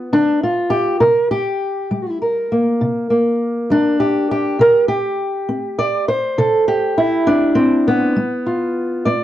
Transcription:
0, 0, Header, 1, 2, 480
1, 0, Start_track
1, 0, Tempo, 594059
1, 828, Time_signature, 12, 3, 24, 8
1, 7464, End_track
2, 0, Start_track
2, 0, Title_t, "Steel-string acoustic guitar"
2, 0, Program_c, 0, 25
2, 0, Note_on_c, 0, 59, 46
2, 0, Note_on_c, 0, 65, 44
2, 104, Note_off_c, 0, 65, 0
2, 104, Note_on_c, 0, 50, 61
2, 107, Note_on_c, 0, 62, 97
2, 346, Note_off_c, 0, 62, 0
2, 353, Note_on_c, 0, 65, 74
2, 539, Note_off_c, 0, 50, 0
2, 568, Note_on_c, 0, 67, 88
2, 800, Note_off_c, 0, 59, 0
2, 808, Note_off_c, 0, 67, 0
2, 811, Note_on_c, 0, 48, 67
2, 812, Note_on_c, 0, 70, 87
2, 830, Note_off_c, 0, 65, 0
2, 1055, Note_off_c, 0, 70, 0
2, 1058, Note_on_c, 0, 67, 95
2, 1252, Note_off_c, 0, 48, 0
2, 1542, Note_on_c, 0, 55, 60
2, 1783, Note_off_c, 0, 67, 0
2, 1789, Note_on_c, 0, 70, 43
2, 1977, Note_off_c, 0, 55, 0
2, 2032, Note_on_c, 0, 58, 43
2, 2268, Note_on_c, 0, 48, 66
2, 2495, Note_off_c, 0, 58, 0
2, 2505, Note_on_c, 0, 58, 50
2, 2701, Note_off_c, 0, 48, 0
2, 2991, Note_on_c, 0, 55, 60
2, 3001, Note_on_c, 0, 62, 84
2, 3229, Note_off_c, 0, 70, 0
2, 3232, Note_on_c, 0, 67, 77
2, 3422, Note_off_c, 0, 55, 0
2, 3470, Note_off_c, 0, 67, 0
2, 3486, Note_on_c, 0, 67, 80
2, 3678, Note_off_c, 0, 58, 0
2, 3710, Note_on_c, 0, 48, 68
2, 3715, Note_off_c, 0, 62, 0
2, 3724, Note_on_c, 0, 70, 96
2, 3935, Note_off_c, 0, 67, 0
2, 3942, Note_off_c, 0, 70, 0
2, 3945, Note_on_c, 0, 67, 104
2, 4141, Note_off_c, 0, 48, 0
2, 4432, Note_on_c, 0, 60, 64
2, 4674, Note_on_c, 0, 74, 90
2, 4862, Note_off_c, 0, 60, 0
2, 4906, Note_off_c, 0, 67, 0
2, 4911, Note_off_c, 0, 74, 0
2, 4916, Note_on_c, 0, 72, 86
2, 5158, Note_on_c, 0, 48, 73
2, 5160, Note_on_c, 0, 69, 79
2, 5394, Note_off_c, 0, 69, 0
2, 5399, Note_on_c, 0, 67, 91
2, 5585, Note_off_c, 0, 48, 0
2, 5632, Note_off_c, 0, 72, 0
2, 5639, Note_on_c, 0, 64, 91
2, 5873, Note_on_c, 0, 62, 85
2, 5883, Note_on_c, 0, 60, 62
2, 6091, Note_off_c, 0, 60, 0
2, 6101, Note_on_c, 0, 60, 82
2, 6112, Note_off_c, 0, 67, 0
2, 6352, Note_off_c, 0, 64, 0
2, 6363, Note_on_c, 0, 59, 88
2, 6583, Note_off_c, 0, 60, 0
2, 6589, Note_off_c, 0, 62, 0
2, 6593, Note_on_c, 0, 55, 68
2, 6838, Note_on_c, 0, 65, 46
2, 7021, Note_off_c, 0, 55, 0
2, 7313, Note_off_c, 0, 59, 0
2, 7314, Note_on_c, 0, 74, 91
2, 7322, Note_on_c, 0, 59, 62
2, 7464, Note_off_c, 0, 59, 0
2, 7464, Note_off_c, 0, 65, 0
2, 7464, Note_off_c, 0, 74, 0
2, 7464, End_track
0, 0, End_of_file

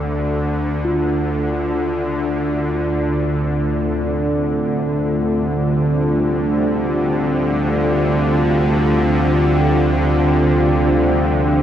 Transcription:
0, 0, Header, 1, 4, 480
1, 0, Start_track
1, 0, Tempo, 500000
1, 11160, End_track
2, 0, Start_track
2, 0, Title_t, "Singing bowl"
2, 0, Program_c, 0, 14
2, 814, Note_on_c, 0, 65, 63
2, 11160, Note_off_c, 0, 65, 0
2, 11160, End_track
3, 0, Start_track
3, 0, Title_t, "Ambient pad"
3, 0, Program_c, 1, 92
3, 0, Note_on_c, 1, 60, 59
3, 0, Note_on_c, 1, 62, 66
3, 0, Note_on_c, 1, 65, 61
3, 0, Note_on_c, 1, 67, 61
3, 820, Note_off_c, 1, 65, 0
3, 824, Note_off_c, 1, 67, 0
3, 842, Note_on_c, 1, 50, 68
3, 847, Note_off_c, 1, 60, 0
3, 1168, Note_on_c, 1, 57, 81
3, 1365, Note_on_c, 1, 60, 74
3, 3189, Note_on_c, 1, 65, 75
3, 3669, Note_off_c, 1, 62, 0
3, 4291, Note_on_c, 1, 67, 76
3, 8502, Note_off_c, 1, 57, 0
3, 8522, Note_off_c, 1, 50, 0
3, 9219, Note_on_c, 1, 62, 82
3, 11160, Note_off_c, 1, 60, 0
3, 11160, Note_off_c, 1, 62, 0
3, 11160, Note_off_c, 1, 65, 0
3, 11160, Note_off_c, 1, 67, 0
3, 11160, End_track
4, 0, Start_track
4, 0, Title_t, "Synth drone"
4, 0, Program_c, 2, 95
4, 0, Note_on_c, 2, 38, 76
4, 0, Note_on_c, 2, 50, 74
4, 806, Note_off_c, 2, 50, 0
4, 814, Note_off_c, 2, 38, 0
4, 818, Note_on_c, 2, 50, 83
4, 826, Note_on_c, 2, 38, 78
4, 11160, Note_off_c, 2, 38, 0
4, 11160, Note_off_c, 2, 50, 0
4, 11160, End_track
0, 0, End_of_file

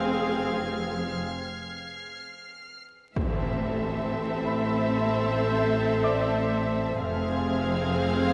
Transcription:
0, 0, Header, 1, 10, 480
1, 0, Start_track
1, 0, Key_signature, 0, "minor"
1, 0, Tempo, 500000
1, 7999, End_track
2, 0, Start_track
2, 0, Title_t, "Violin section"
2, 0, Program_c, 0, 48
2, 0, Note_on_c, 0, 89, 31
2, 0, Note_on_c, 0, 92, 30
2, 501, Note_on_c, 0, 96, 28
2, 2052, Note_off_c, 0, 92, 0
2, 2688, Note_off_c, 0, 96, 0
2, 2689, Note_off_c, 0, 89, 0
2, 6722, Note_on_c, 0, 89, 34
2, 6722, Note_on_c, 0, 92, 36
2, 7999, Note_off_c, 0, 89, 0
2, 7999, Note_off_c, 0, 92, 0
2, 7999, End_track
3, 0, Start_track
3, 0, Title_t, "Grand piano"
3, 0, Program_c, 1, 0
3, 0, Control_c, 1, 64, 127
3, 0, Note_on_c, 1, 71, 41
3, 780, Note_off_c, 1, 71, 0
3, 3060, Control_c, 1, 64, 0
3, 3236, Control_c, 1, 64, 127
3, 4279, Note_on_c, 1, 83, 39
3, 5798, Note_on_c, 1, 86, 38
3, 5801, Note_on_c, 1, 74, 29
3, 6072, Note_off_c, 1, 83, 0
3, 6737, Control_c, 1, 64, 0
3, 6872, Control_c, 1, 64, 127
3, 7579, Note_off_c, 1, 86, 0
3, 7580, Note_off_c, 1, 74, 0
3, 7999, End_track
4, 0, Start_track
4, 0, Title_t, "Violin section"
4, 0, Program_c, 2, 48
4, 0, Note_on_c, 2, 77, 42
4, 1095, Note_off_c, 2, 77, 0
4, 3035, Note_on_c, 2, 76, 43
4, 6677, Note_off_c, 2, 76, 0
4, 6717, Note_on_c, 2, 77, 54
4, 7999, Note_off_c, 2, 77, 0
4, 7999, End_track
5, 0, Start_track
5, 0, Title_t, "Synth texture"
5, 0, Program_c, 3, 99
5, 0, Note_on_c, 3, 60, 50
5, 0, Note_on_c, 3, 68, 49
5, 0, Note_on_c, 3, 77, 47
5, 1093, Note_off_c, 3, 68, 0
5, 1095, Note_off_c, 3, 60, 0
5, 1135, Note_off_c, 3, 77, 0
5, 3039, Note_on_c, 3, 76, 49
5, 3041, Note_on_c, 3, 72, 51
5, 3042, Note_on_c, 3, 69, 49
5, 6679, Note_off_c, 3, 76, 0
5, 6680, Note_off_c, 3, 72, 0
5, 6681, Note_off_c, 3, 69, 0
5, 6721, Note_on_c, 3, 68, 56
5, 6721, Note_on_c, 3, 77, 56
5, 6724, Note_on_c, 3, 72, 54
5, 7999, Note_off_c, 3, 68, 0
5, 7999, Note_off_c, 3, 72, 0
5, 7999, Note_off_c, 3, 77, 0
5, 7999, End_track
6, 0, Start_track
6, 0, Title_t, "Violin section"
6, 0, Program_c, 4, 48
6, 3039, Note_on_c, 4, 69, 42
6, 6679, Note_off_c, 4, 69, 0
6, 6719, Note_on_c, 4, 68, 51
6, 7999, Note_off_c, 4, 68, 0
6, 7999, End_track
7, 0, Start_track
7, 0, Title_t, "Viola section"
7, 0, Program_c, 5, 48
7, 0, Note_on_c, 5, 60, 42
7, 0, Note_on_c, 5, 68, 41
7, 1094, Note_off_c, 5, 60, 0
7, 1095, Note_off_c, 5, 68, 0
7, 3040, Note_on_c, 5, 60, 41
7, 6679, Note_off_c, 5, 60, 0
7, 6710, Note_on_c, 5, 60, 54
7, 7999, Note_off_c, 5, 60, 0
7, 7999, End_track
8, 0, Start_track
8, 0, Title_t, "Cello section"
8, 0, Program_c, 6, 48
8, 0, Note_on_c, 6, 41, 43
8, 1097, Note_off_c, 6, 41, 0
8, 3036, Note_on_c, 6, 45, 41
8, 6678, Note_off_c, 6, 45, 0
8, 6715, Note_on_c, 6, 41, 48
8, 7999, Note_off_c, 6, 41, 0
8, 7999, End_track
9, 0, Start_track
9, 0, Title_t, "Double bass section"
9, 0, Program_c, 7, 48
9, 0, Note_on_c, 7, 29, 41
9, 1095, Note_off_c, 7, 29, 0
9, 3038, Note_on_c, 7, 33, 38
9, 6679, Note_off_c, 7, 33, 0
9, 6710, Note_on_c, 7, 29, 46
9, 7999, Note_off_c, 7, 29, 0
9, 7999, End_track
10, 0, Start_track
10, 0, Title_t, "Impact"
10, 0, Program_c, 8, 103
10, 3037, Note_on_c, 8, 60, 45
10, 4891, Note_off_c, 8, 60, 0
10, 7999, End_track
0, 0, End_of_file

